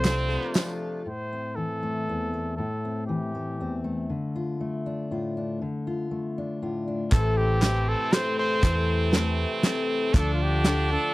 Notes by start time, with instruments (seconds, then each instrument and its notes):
Already playing: fingered electric bass C2, harmonium C3 F3 A3 D4, trumpet C5
0.04 twelve-string acoustic guitar F3 C4 F4 A4, french horn C4, snare, clap, closed hi-hat, tambourine
0.29 twelve-string acoustic guitar C4 F4 A4, tambourine
0.44 clap
0.54 twelve-string acoustic guitar F3 C4 F4 A4, snare, clap, closed hi-hat, tambourine
0.69 clap
1.06 steel-string acoustic guitar A2, trumpet C5
1.33 steel-string acoustic guitar C4
1.55 steel-string acoustic guitar E3, trumpet A4
1.83 steel-string acoustic guitar A3
2.08 steel-string acoustic guitar E2 C4
2.34 steel-string acoustic guitar A3
2.56 steel-string acoustic guitar A2, trumpet A4
2.85 steel-string acoustic guitar C4
3.07 steel-string acoustic guitar E3, trumpet G4
3.35 steel-string acoustic guitar A3
3.60 steel-string acoustic guitar E2 C4
3.84 steel-string acoustic guitar A3
4.10 steel-string acoustic guitar D3
4.36 steel-string acoustic guitar F4
4.61 steel-string acoustic guitar A3
4.86 steel-string acoustic guitar D4
5.11 steel-string acoustic guitar A2 F4
5.37 steel-string acoustic guitar D4
5.62 steel-string acoustic guitar D3
5.87 steel-string acoustic guitar F4
6.11 steel-string acoustic guitar A3
6.38 steel-string acoustic guitar D4
6.62 steel-string acoustic guitar A2 F4
6.88 steel-string acoustic guitar D4
7.11 fingered electric bass A1, twelve-string acoustic guitar A2 E3 A3 C4 E4 A4, harmonium C3 E3 A3 E4, french horn C4, trumpet A4, kick, clap, closed hi-hat
7.38 trumpet G4
7.61 twelve-string acoustic guitar A3 C4 E4 A4, snare, clap, closed hi-hat
7.89 trumpet A4
8.11 twelve-string acoustic guitar A3 C4 E4 A4, trumpet C5, snare, clap, closed hi-hat
8.39 trumpet C5
8.62 fingered electric bass E2, twelve-string acoustic guitar A2 E3 A3 C4 E4 A4, kick, clap, closed hi-hat
9.11 twelve-string acoustic guitar A3 C4 E4 A4, snare, clap, closed hi-hat
9.63 twelve-string acoustic guitar A3 C4 E4 A4, snare, clap, closed hi-hat
10.13 fingered electric bass D2, twelve-string acoustic guitar D3 F3 D4 F4 A4, harmonium D3 F3 D4, french horn D4, kick, clap, closed hi-hat
10.18 trumpet A4
10.34 trumpet F4
10.43 trumpet G4
10.64 twelve-string acoustic guitar F3 D4 F4 A4, snare, clap, closed hi-hat
10.88 twelve-string acoustic guitar D4 F4 A4
10.92 trumpet A4